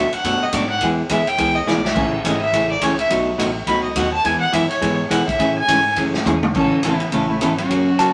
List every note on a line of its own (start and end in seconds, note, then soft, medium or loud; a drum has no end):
0.00 0.12 D2 loud
0.00 0.12 E5 medium
0.13 0.44 F#5 loud
0.13 muted upright bass stroke soft
0.13 ride medium
0.24 0.40 F#2 medium
0.24 0.44 B2 medium
0.24 0.44 F#3 medium
0.24 0.44 A3 medium
0.24 0.44 D4 medium
0.24 0.44 F#4 medium
0.24 kick soft
0.24 ride medium
0.43 0.56 D#5 medium
0.53 0.81 G#2 loud
0.53 0.64 B2 medium
0.53 0.64 F#3 medium
0.53 0.64 A3 medium
0.53 0.64 D4 medium
0.53 0.64 F#4 medium
0.53 0.69 D5 medium
0.53 kick soft
0.53 hi-hat pedal medium
0.53 ride medium
0.70 0.81 F#5 loud
0.81 1.09 E2 medium
0.81 1.01 E3 medium
0.81 1.01 G#3 medium
0.81 1.01 B3 medium
0.81 1.01 E4 medium
0.81 1.02 G#4 medium
0.81 kick soft
0.81 ride medium
1.09 1.38 D2 loud
1.09 1.21 E3 medium
1.09 1.21 G#3 medium
1.09 1.21 B3 medium
1.09 1.21 E4 medium
1.09 1.21 G#4 medium
1.09 1.30 E5 loud
1.09 kick soft
1.09 hi-hat pedal medium
1.09 ride medium
1.27 1.57 G5 loud
1.27 ride soft
1.38 1.66 C#2 medium
1.38 1.57 E3 medium
1.38 1.58 G#3 medium
1.38 1.58 B3 medium
1.38 1.58 E4 medium
1.38 1.58 G#4 medium
1.38 kick soft
1.38 ride medium
1.56 1.70 D#5 loud
1.66 1.95 B1 medium
1.66 1.78 E3 medium
1.66 1.78 G#3 medium
1.66 1.78 B3 medium
1.66 1.78 E4 medium
1.66 1.78 G#4 medium
1.66 1.86 D5 medium
1.66 snare soft
1.66 hi-hat pedal medium
1.85 1.96 E5 loud
1.85 snare medium
1.95 2.23 A1 medium
1.95 2.15 C#3 medium
1.95 2.15 E3 medium
1.95 2.15 A3 medium
1.95 2.15 C#4 medium
1.95 2.16 G#4 medium
1.95 kick medium
1.95 crash medium
2.24 2.52 G#1 loud
2.24 2.36 C#3 medium
2.24 2.36 E3 medium
2.24 2.36 A3 medium
2.24 2.36 C#4 medium
2.24 2.36 G#4 medium
2.24 2.41 D#5 medium
2.24 kick soft
2.24 hi-hat pedal medium
2.24 ride medium
2.42 2.68 E5 loud
2.53 2.81 A1 loud
2.53 2.73 C#3 medium
2.53 2.73 E3 medium
2.53 2.73 A3 medium
2.53 2.73 C#4 medium
2.53 2.73 G#4 medium
2.53 kick soft
2.53 ride medium
2.71 2.86 D5 medium
2.81 3.09 C#2 loud
2.81 2.93 C#3 medium
2.81 2.93 E3 medium
2.81 2.93 A3 medium
2.81 2.93 C#4 medium
2.81 2.93 G#4 medium
2.81 2.99 C#5 medium
2.81 kick soft
2.81 hi-hat pedal medium
2.81 ride medium
2.99 3.06 E5 loud
2.99 ride soft
3.10 3.38 B1 medium
3.10 3.29 B2 medium
3.10 3.30 F#3 medium
3.10 3.30 A3 medium
3.10 3.30 D#4 medium
3.10 3.30 F#4 medium
3.10 kick soft
3.10 ride medium
3.38 3.66 A1 loud
3.38 3.49 B2 medium
3.38 3.49 F#3 medium
3.38 3.50 A3 medium
3.38 3.50 D#4 medium
3.38 3.50 F#4 medium
3.38 kick soft
3.38 hi-hat pedal medium
3.38 ride medium
3.67 3.95 C#2 medium
3.67 3.87 B2 medium
3.67 3.87 F#3 medium
3.67 3.87 A3 medium
3.67 3.87 D#4 medium
3.67 3.87 F#4 medium
3.67 3.83 B5 loud
3.67 kick soft
3.67 ride medium
3.84 3.98 D#5 medium
3.96 4.24 D#2 medium
3.96 4.07 B2 medium
3.96 4.07 F#3 medium
3.96 4.07 A3 medium
3.96 4.07 D#4 medium
3.96 4.07 F#4 medium
3.96 4.13 F#5 loud
3.96 kick soft
3.96 hi-hat pedal medium
3.96 ride medium
4.14 4.27 A5 loud
4.24 4.40 E2 medium
4.24 4.44 E3 medium
4.24 4.44 G#3 medium
4.24 4.44 B3 medium
4.24 4.44 E4 medium
4.24 4.44 G#4 medium
4.24 4.40 G#5 loud
4.24 kick soft
4.24 ride medium
4.40 4.55 F#5 loud
4.52 4.69 F#2 loud
4.52 4.64 E3 medium
4.52 4.64 G#3 medium
4.52 4.64 B3 medium
4.52 4.64 E4 medium
4.52 4.64 G#4 medium
4.52 4.69 E5 loud
4.52 kick soft
4.52 hi-hat pedal medium
4.52 ride medium
4.70 4.97 C#5 medium
4.70 ride soft
4.81 5.10 G#2 medium
4.81 5.01 E3 medium
4.81 5.01 G#3 medium
4.81 5.01 B3 medium
4.81 5.01 E4 medium
4.81 5.01 G#4 medium
4.81 kick soft
4.81 ride medium
5.10 5.27 B2 medium
5.10 5.21 E3 medium
5.10 5.21 G#3 medium
5.10 5.21 B3 medium
5.10 5.21 E4 medium
5.10 5.21 G#4 medium
5.10 5.27 F#5 medium
5.10 kick soft
5.10 hi-hat pedal medium
5.10 ride medium
5.28 5.55 E5 loud
5.28 kick medium
5.28 ride medium
5.39 5.67 A2 medium
5.39 5.58 C#3 medium
5.39 5.59 E3 medium
5.39 5.59 A3 medium
5.39 5.59 C#4 medium
5.39 5.59 G#4 medium
5.39 kick soft
5.39 ride medium
5.58 5.95 G#5 loud
5.67 5.96 G#2 medium
5.67 5.79 C#3 medium
5.67 5.79 E3 medium
5.67 5.79 A3 medium
5.67 5.79 C#4 medium
5.67 5.79 G#4 medium
5.67 kick soft
5.67 hi-hat pedal medium
5.67 ride medium
5.96 6.25 F#2 loud
5.96 6.16 C#3 medium
5.96 6.16 E3 medium
5.96 6.17 A3 medium
5.96 6.17 C#4 medium
5.96 6.17 G#4 medium
5.96 kick soft
5.96 ride medium
6.14 snare medium
6.25 6.53 E2 loud
6.25 6.36 C#3 medium
6.25 6.36 E3 medium
6.25 6.37 A3 medium
6.25 6.37 C#4 medium
6.25 6.37 G#4 medium
6.25 hi-hat pedal medium
6.25 mid tom medium
6.43 mid tom medium
6.55 7.00 A1 medium
6.55 6.74 C#3 medium
6.55 6.74 E3 medium
6.55 6.74 A3 medium
6.55 6.74 C#4 medium
6.55 6.74 A4 medium
6.55 6.82 A4 medium
6.55 kick medium
6.55 crash medium
6.83 6.95 C#3 medium
6.83 6.95 E3 medium
6.83 6.95 A3 medium
6.83 7.13 B3 medium
6.83 6.95 C#4 medium
6.83 7.11 E4 medium
6.83 6.95 A4 medium
6.83 kick soft
6.83 hi-hat pedal medium
6.83 ride medium
7.00 ride soft
7.12 7.36 A1 medium
7.12 7.31 C#3 medium
7.12 7.32 E3 medium
7.12 7.32 A3 medium
7.12 7.32 C#4 medium
7.12 7.28 E4 medium
7.12 7.32 A4 medium
7.12 kick soft
7.12 ride medium
7.29 7.40 C#3 medium
7.29 7.42 A3 medium
7.29 7.39 E4 medium
7.41 7.65 G#1 medium
7.41 7.52 C#3 medium
7.41 7.52 E3 medium
7.41 7.52 A3 medium
7.41 7.59 B3 medium
7.41 7.52 C#4 medium
7.41 7.57 E4 medium
7.41 7.52 A4 medium
7.41 kick soft
7.41 hi-hat pedal medium
7.41 ride medium
7.58 8.13 F#3 medium
7.58 8.13 C#4 medium
7.58 8.13 F#4 medium
7.58 ride soft
7.69 8.13 F#1 medium
7.69 7.89 C#3 medium
7.69 7.89 F#3 medium
7.69 7.89 A#3 medium
7.69 7.89 C#4 medium
7.69 7.89 F#4 medium
7.69 kick soft
7.69 ride medium
7.98 8.09 C#3 medium
7.98 8.09 F#3 medium
7.98 8.09 A#3 medium
7.98 8.10 C#4 medium
7.98 8.09 F#4 medium
7.98 8.13 A5 medium
7.98 kick soft
7.98 hi-hat pedal medium
7.98 ride medium